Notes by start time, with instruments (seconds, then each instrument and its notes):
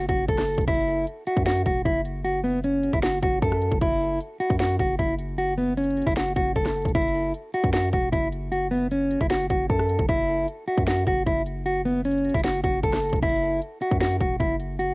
0.09 808-style bass F#1, clean electric guitar F#4, kick, closed hi-hat
0.28 808-style bass F#1, clean electric guitar A4, kick, closed hi-hat
0.38 cross-stick, snare
0.48 closed hi-hat
0.55 808-style bass E1, kick, closed hi-hat
0.61 closed hi-hat
0.68 808-style bass F#1, clean electric guitar E4, kick, closed hi-hat
0.74 closed hi-hat
0.81 closed hi-hat
0.87 open hi-hat
1.07 closed hi-hat
1.27 clean electric guitar F#4, closed hi-hat
1.36 808-style bass F#2, kick
1.46 clean electric guitar F#4, finger snap, snare, closed hi-hat
1.66 808-style bass E1, clean electric guitar F#4, kick, closed hi-hat
1.85 808-style bass F#1, clean electric guitar E4, kick, closed hi-hat
2.05 closed hi-hat
2.24 clean electric guitar F#4, closed hi-hat
2.44 clean electric guitar B3, open hi-hat
2.64 clean electric guitar C#4, closed hi-hat
2.83 closed hi-hat
2.93 808-style bass F#1, clean electric guitar E4, kick
3.02 clean electric guitar F#4, finger snap, snare, closed hi-hat
3.23 808-style bass F#1, clean electric guitar F#4, kick, closed hi-hat
3.42 808-style bass F#2, clean electric guitar A4, kick, closed hi-hat
3.52 cross-stick
3.62 closed hi-hat
3.72 808-style bass F#1, kick
3.81 808-style bass F#1, clean electric guitar E4, kick, closed hi-hat
4.01 open hi-hat
4.21 closed hi-hat
4.40 clean electric guitar F#4, closed hi-hat
4.50 808-style bass F#2, kick
4.59 clean electric guitar F#4, finger snap, snare, closed hi-hat
4.79 808-style bass F#1, clean electric guitar F#4, kick, closed hi-hat
4.99 808-style bass F#1, clean electric guitar E4, kick, closed hi-hat
5.19 closed hi-hat
5.38 clean electric guitar F#4, closed hi-hat
5.58 clean electric guitar B3, open hi-hat
5.78 clean electric guitar C#4, closed hi-hat
5.84 closed hi-hat
5.91 closed hi-hat
5.97 closed hi-hat
6.02 closed hi-hat
6.07 808-style bass F#1, clean electric guitar E4, kick, closed hi-hat
6.12 closed hi-hat
6.16 clean electric guitar F#4, finger snap, snare, closed hi-hat
6.36 808-style bass F#1, clean electric guitar F#4, kick, closed hi-hat
6.56 808-style bass F#1, clean electric guitar A4, kick, closed hi-hat
6.66 cross-stick, snare
6.76 closed hi-hat
6.82 808-style bass E1, kick, closed hi-hat
6.89 closed hi-hat
6.95 808-style bass F#1, clean electric guitar E4, kick, closed hi-hat
7.02 closed hi-hat
7.08 closed hi-hat
7.15 open hi-hat
7.34 closed hi-hat
7.54 clean electric guitar F#4, closed hi-hat
7.64 808-style bass F#2, kick
7.73 clean electric guitar F#4, finger snap, snare, closed hi-hat
7.93 808-style bass E1, clean electric guitar F#4, kick, closed hi-hat
8.12 808-style bass F#1, clean electric guitar E4, kick, closed hi-hat
8.32 closed hi-hat
8.52 clean electric guitar F#4, closed hi-hat
8.71 clean electric guitar B3, open hi-hat
8.91 clean electric guitar C#4, closed hi-hat
9.11 closed hi-hat
9.21 808-style bass F#1, clean electric guitar E4, kick
9.30 clean electric guitar F#4, finger snap, snare, closed hi-hat
9.50 808-style bass F#1, clean electric guitar F#4, kick, closed hi-hat
9.70 808-style bass F#2, clean electric guitar A4, kick, closed hi-hat
9.79 cross-stick
9.89 closed hi-hat
9.99 808-style bass F#1, kick
10.09 808-style bass F#1, clean electric guitar E4, kick, closed hi-hat
10.28 open hi-hat
10.48 closed hi-hat
10.68 clean electric guitar F#4, closed hi-hat
10.78 808-style bass F#2, kick
10.87 clean electric guitar F#4, finger snap, snare, closed hi-hat
11.07 808-style bass F#1, clean electric guitar F#4, kick, closed hi-hat
11.26 808-style bass F#1, clean electric guitar E4, kick, closed hi-hat
11.46 closed hi-hat
11.66 clean electric guitar F#4, closed hi-hat
11.85 clean electric guitar B3, open hi-hat
12.05 clean electric guitar C#4, closed hi-hat
12.11 closed hi-hat
12.18 closed hi-hat
12.25 closed hi-hat
12.29 closed hi-hat
12.34 808-style bass F#1, clean electric guitar E4, kick, closed hi-hat
12.39 closed hi-hat
12.44 clean electric guitar F#4, finger snap, snare, closed hi-hat
12.64 808-style bass F#1, clean electric guitar F#4, kick, closed hi-hat
12.83 808-style bass F#1, clean electric guitar A4, kick, closed hi-hat
12.93 cross-stick, snare
13.03 closed hi-hat
13.09 808-style bass E1, kick, closed hi-hat
13.16 closed hi-hat
13.23 808-style bass F#1, clean electric guitar E4, kick, closed hi-hat
13.29 closed hi-hat
13.36 closed hi-hat
13.42 open hi-hat
13.62 closed hi-hat
13.81 clean electric guitar F#4, closed hi-hat
13.91 808-style bass F#2, kick
14.00 clean electric guitar F#4, finger snap, snare, closed hi-hat
14.21 808-style bass E1, clean electric guitar F#4, kick, closed hi-hat
14.40 808-style bass F#1, clean electric guitar E4, kick, closed hi-hat
14.60 closed hi-hat
14.79 clean electric guitar F#4, closed hi-hat